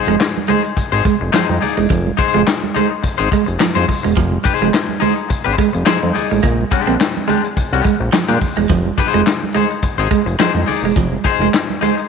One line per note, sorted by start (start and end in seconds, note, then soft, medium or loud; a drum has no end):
0.00 0.14 D#4 medium
0.00 0.14 G#4 medium
0.00 0.14 C5 medium
0.07 0.17 F1 medium
0.07 0.16 G#3 medium
0.20 muted clean electric guitar stroke soft
0.20 snare loud
0.20 clap medium
0.20 closed hi-hat medium
0.37 muted conga soft
0.37 high conga medium
0.48 0.58 G#3 medium
0.48 0.66 D#4 medium
0.48 0.65 G#4 medium
0.48 0.63 C5 medium
0.48 closed hi-hat medium
0.48 low conga medium
0.64 muted clean electric guitar stroke soft
0.64 closed hi-hat soft
0.76 0.83 G#1 soft
0.76 muted clean electric guitar stroke soft
0.76 kick medium
0.76 closed hi-hat loud
0.76 muted conga soft
0.92 1.02 G#1 medium
0.92 1.04 D#4 medium
0.92 1.05 G#4 medium
0.92 1.05 C5 medium
0.92 muted conga soft
1.05 1.15 G#3 medium
1.05 kick loud
1.05 closed hi-hat medium
1.05 high conga soft
1.21 1.31 F1 medium
1.21 muted clean electric guitar stroke soft
1.32 1.44 F3 medium
1.32 1.55 D#4 medium
1.32 1.49 G#4 medium
1.32 1.48 C5 loud
1.32 snare loud
1.32 clap medium
1.32 closed hi-hat loud
1.32 muted conga soft
1.49 1.59 F2 loud
1.49 muted clean electric guitar stroke soft
1.49 muted conga soft
1.49 high conga medium
1.61 1.79 D#4 medium
1.61 1.77 G#4 medium
1.61 1.76 D5 medium
1.61 muted clean electric guitar stroke soft
1.61 open hi-hat medium
1.61 low conga medium
1.77 1.87 E1 medium
1.77 1.85 G#3 medium
1.77 muted clean electric guitar stroke soft
1.90 2.12 F1 loud
1.90 2.00 F3 medium
1.90 kick loud
1.90 closed hi-hat medium
1.90 muted conga soft
1.90 low conga medium
2.07 muted conga soft
2.07 high conga medium
2.17 2.40 D#4 medium
2.17 2.41 G#4 medium
2.17 2.41 C5 loud
2.17 muted clean electric guitar stroke soft
2.17 kick medium
2.17 closed hi-hat medium
2.34 2.44 F1 loud
2.34 2.42 G#3 medium
2.46 muted clean electric guitar stroke soft
2.46 snare loud
2.46 clap loud
2.46 closed hi-hat medium
2.46 muted conga soft
2.64 muted conga soft
2.64 high conga medium
2.74 2.86 G#3 medium
2.74 2.93 D#4 medium
2.74 2.91 G#4 medium
2.74 2.89 C5 medium
2.74 closed hi-hat medium
2.74 low conga medium
2.91 muted clean electric guitar stroke soft
3.03 3.10 G#1 soft
3.03 muted clean electric guitar stroke soft
3.03 kick medium
3.03 closed hi-hat medium
3.03 muted conga soft
3.18 3.29 G#1 medium
3.18 3.30 D#4 medium
3.18 3.30 G#4 medium
3.18 3.31 C5 medium
3.18 muted conga soft
3.32 3.43 G#3 medium
3.32 kick medium
3.32 closed hi-hat medium
3.32 high conga soft
3.46 3.57 F1 medium
3.46 muted clean electric guitar stroke soft
3.46 closed hi-hat soft
3.59 3.70 F3 medium
3.59 muted clean electric guitar stroke soft
3.59 snare loud
3.59 clap medium
3.59 closed hi-hat loud
3.59 muted conga soft
3.75 3.86 F2 medium
3.75 3.86 D#4 medium
3.75 3.87 G#4 medium
3.75 3.87 C5 medium
3.75 muted conga soft
3.75 high conga medium
3.87 muted clean electric guitar stroke soft
3.87 kick medium
3.87 open hi-hat medium
3.87 low conga medium
4.03 4.14 E1 medium
4.03 4.12 G#3 medium
4.03 muted clean electric guitar stroke soft
4.16 4.38 F1 loud
4.16 4.27 F3 medium
4.16 kick loud
4.16 closed hi-hat medium
4.16 muted conga soft
4.16 low conga medium
4.32 high conga medium
4.44 4.66 D#4 medium
4.44 4.67 G#4 medium
4.44 4.68 C5 medium
4.44 muted clean electric guitar stroke soft
4.44 kick loud
4.44 closed hi-hat medium
4.62 4.71 F1 medium
4.62 4.70 G#3 medium
4.73 muted clean electric guitar stroke soft
4.73 snare loud
4.73 clap medium
4.73 closed hi-hat medium
4.73 muted conga soft
4.89 high conga medium
5.00 5.12 G#3 medium
5.00 5.19 D#4 medium
5.00 5.17 G#4 medium
5.00 5.15 C5 medium
5.00 closed hi-hat medium
5.00 low conga medium
5.16 muted clean electric guitar stroke soft
5.16 closed hi-hat soft
5.29 5.37 G#1 soft
5.29 muted clean electric guitar stroke soft
5.29 kick medium
5.29 closed hi-hat medium
5.29 muted conga soft
5.44 5.56 G#1 medium
5.44 5.56 D#4 medium
5.44 5.57 G#4 medium
5.44 5.57 C5 loud
5.44 muted conga soft
5.58 5.68 G#3 medium
5.58 kick medium
5.58 closed hi-hat medium
5.58 high conga soft
5.73 5.84 F1 loud
5.73 muted clean electric guitar stroke soft
5.73 closed hi-hat medium
5.85 5.97 F3 medium
5.85 6.08 D#4 medium
5.85 6.02 G#4 medium
5.85 6.00 C5 medium
5.85 snare loud
5.85 clap medium
5.85 closed hi-hat medium
5.85 muted conga soft
6.01 6.12 F2 medium
6.01 muted clean electric guitar stroke soft
6.01 muted conga soft
6.01 high conga medium
6.13 6.32 D#4 medium
6.13 6.30 G#4 medium
6.13 6.30 D5 medium
6.13 muted clean electric guitar stroke soft
6.13 open hi-hat medium
6.13 low conga medium
6.30 6.41 A1 medium
6.30 6.39 G#3 medium
6.30 muted clean electric guitar stroke soft
6.43 6.65 A#1 loud
6.43 6.53 A#3 medium
6.43 kick loud
6.43 closed hi-hat medium
6.43 low conga medium
6.61 high conga medium
6.71 6.94 G#3 medium
6.71 6.94 D4 loud
6.71 6.94 G4 medium
6.71 muted clean electric guitar stroke soft
6.71 kick loud
6.71 closed hi-hat medium
6.87 6.97 A#1 medium
6.87 6.95 C4 medium
6.99 muted clean electric guitar stroke soft
6.99 snare loud
6.99 clap medium
6.99 closed hi-hat loud
7.17 high conga medium
7.28 7.46 G#3 medium
7.28 7.38 G#3 medium
7.28 7.45 D4 medium
7.28 7.43 G4 medium
7.28 closed hi-hat medium
7.28 low conga medium
7.44 muted clean electric guitar stroke soft
7.44 closed hi-hat soft
7.57 7.63 C2 soft
7.57 muted clean electric guitar stroke soft
7.57 kick medium
7.57 closed hi-hat medium
7.57 muted conga soft
7.73 7.82 C2 medium
7.73 7.85 G#3 medium
7.73 7.85 D4 medium
7.73 7.86 G4 medium
7.73 muted conga soft
7.85 7.95 G#3 medium
7.85 kick medium
7.85 closed hi-hat medium
7.85 high conga medium
8.00 8.10 A#1 loud
8.00 muted clean electric guitar stroke soft
8.12 8.23 F3 medium
8.12 muted clean electric guitar stroke soft
8.12 snare loud
8.12 clap medium
8.12 closed hi-hat loud
8.12 muted conga soft
8.28 8.38 A#2 loud
8.28 8.39 G#3 medium
8.28 8.41 D4 medium
8.28 8.41 G4 medium
8.28 high conga medium
8.41 muted clean electric guitar stroke soft
8.41 kick medium
8.41 open hi-hat medium
8.41 low conga medium
8.57 8.67 E1 medium
8.57 8.65 G#3 medium
8.57 muted clean electric guitar stroke soft
8.69 8.92 F1 loud
8.69 8.80 F3 medium
8.69 kick loud
8.69 closed hi-hat medium
8.69 muted conga soft
8.69 low conga medium
8.86 muted conga soft
8.86 high conga medium
8.97 9.20 D#4 medium
8.97 9.21 G#4 medium
8.97 9.21 C5 loud
8.97 muted clean electric guitar stroke soft
8.97 kick loud
8.97 closed hi-hat medium
9.14 9.24 F1 medium
9.14 9.22 G#3 medium
9.26 muted clean electric guitar stroke soft
9.26 snare loud
9.26 clap medium
9.26 closed hi-hat medium
9.43 high conga medium
9.54 9.65 G#3 medium
9.54 9.73 D#4 medium
9.54 9.71 G#4 medium
9.54 9.69 C5 medium
9.54 closed hi-hat medium
9.54 low conga medium
9.70 muted clean electric guitar stroke soft
9.70 closed hi-hat soft
9.82 9.89 G#1 soft
9.82 muted clean electric guitar stroke soft
9.82 kick medium
9.82 closed hi-hat medium
9.82 muted conga soft
9.98 10.08 G#1 medium
9.98 10.09 D#4 medium
9.98 10.10 G#4 medium
9.98 10.10 C5 medium
10.10 10.21 G#3 medium
10.10 muted clean electric guitar stroke soft
10.10 kick medium
10.10 closed hi-hat medium
10.10 high conga medium
10.26 10.36 F1 medium
10.26 muted clean electric guitar stroke soft
10.26 closed hi-hat soft
10.39 10.50 F3 medium
10.39 10.62 D#4 medium
10.39 10.55 G#4 medium
10.39 10.54 C5 medium
10.39 snare loud
10.39 clap medium
10.39 closed hi-hat loud
10.39 muted conga soft
10.54 10.64 F2 medium
10.54 muted clean electric guitar stroke soft
10.54 muted conga soft
10.54 high conga medium
10.66 10.85 D#4 medium
10.66 10.83 G#4 medium
10.66 10.83 D5 medium
10.66 muted clean electric guitar stroke soft
10.66 open hi-hat medium
10.66 low conga medium
10.83 10.93 E1 medium
10.83 10.93 G#3 medium
10.83 muted clean electric guitar stroke soft
10.96 11.18 F1 loud
10.96 11.07 F3 medium
10.96 kick loud
10.96 closed hi-hat medium
10.96 muted conga soft
10.96 low conga medium
11.13 high conga medium
11.24 11.47 D#4 medium
11.24 11.47 G#4 medium
11.24 11.48 C5 loud
11.24 muted clean electric guitar stroke soft
11.24 kick medium
11.24 closed hi-hat medium
11.39 11.49 F1 medium
11.39 11.49 G#3 medium
11.53 muted clean electric guitar stroke soft
11.53 snare loud
11.53 clap medium
11.53 closed hi-hat medium
11.53 muted conga soft
11.70 muted conga soft
11.70 high conga medium
11.81 11.92 G#3 medium
11.81 11.99 D#4 medium
11.81 11.98 G#4 medium
11.81 11.96 C5 medium
11.81 closed hi-hat medium
11.81 low conga medium
11.98 muted clean electric guitar stroke soft
11.98 closed hi-hat soft